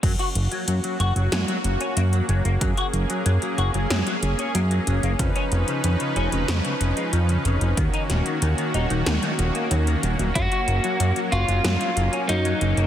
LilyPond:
<<
  \new Staff \with { instrumentName = "Lead electric guitar" } { \time 4/4 \key fis \major \tempo 4 = 93 r1 | r1 | r1 | r1 |
fis'4. eis'4. dis'4 | }
  \new Staff \with { instrumentName = "Supersaw synth" } { \time 4/4 \key fis \major << { fis'1 | gis'1 | <eis b'>1 | <dis fis'>1 |
cis'1 | } \\ { <ais cis'>1~ | <ais cis'>1 | dis'1 | ais1 |
fis1 | } >> }
  \new Staff \with { instrumentName = "Clean electric guitar" } { \clef bass \time 4/4 \key fis \major fis16 fis'16 r16 fis16 fis16 fis16 fis'16 fis16 fis16 fis16 r16 cis'16 ais16 fis16 fis16 ais16 | fis16 fis'16 r16 fis16 fis16 fis16 fis'16 fis16 fis16 fis16 r16 cis'16 ais16 fis16 fis16 ais16 | cis16 cis'16 r16 cis16 cis16 cis16 cis'16 cis16 cis16 cis16 r16 gis16 eis16 cis16 cis16 eis16 | dis16 dis'16 r16 dis16 dis16 dis16 dis'16 dis16 dis16 dis16 r16 ais16 fis16 dis16 dis16 fis16 |
fis16 fis'16 r16 fis16 fis16 fis16 fis'16 fis16 fis16 fis16 r16 cis'16 ais16 fis16 fis16 ais16 | }
  \new Staff \with { instrumentName = "Analog synth bass" } { \clef bass \time 4/4 \key fis \major fis,16 r16 fis,,16 r16 fis,16 r16 fis,,16 fis,,16 fis,16 r16 fis,,16 r16 fis,8 fis,,16 fis,,16 | fis,16 r16 fis,,16 r16 fis,16 r16 fis,,16 fis,,16 fis,16 r16 fis,,16 r16 fis,8 fis,,16 fis,,16 | eis,16 r16 eis,,16 r16 eis,16 r16 eis,,16 eis,,16 eis,16 r16 eis,,16 r16 eis,8 eis,,16 eis,,16 | dis,16 r16 dis,,16 r16 dis,16 r16 dis,,16 dis,,16 dis,16 r16 dis,,16 r16 dis,8 dis,,16 dis,,16 |
fis,16 r16 fis,,16 r16 fis,16 r16 fis,,16 fis,,16 fis,16 r16 fis,,16 r16 fis,8 fis,,16 fis,,16 | }
  \new DrumStaff \with { instrumentName = "Drums" } \drummode { \time 4/4 <cymc hh bd>16 hh16 hh16 hh16 hh16 hh16 hh16 hh16 <hh sn>16 hh16 hh16 hh16 hh16 hh16 hh16 hh16 | <hh bd>16 hh16 hh16 hh16 hh16 hh16 hh16 hh16 <hh sn>16 hh16 hh16 hh16 hh16 hh16 hh16 hh16 | <hh bd>16 hh16 hh16 hh16 hh16 hh16 hh16 hh16 <hh sn>16 hh16 hh16 hh16 hh16 hh16 hh16 hh16 | <hh bd>16 hh16 <hh sn>16 hh16 hh16 hh16 hh16 hh16 <hh sn>16 hh16 hh16 hh16 hh16 hh16 hh16 hh16 |
<hh bd>16 hh16 hh16 hh16 hh16 hh16 hh16 hh16 <hh sn>16 hh16 hh16 hh16 hh16 hh16 hh16 hh16 | }
>>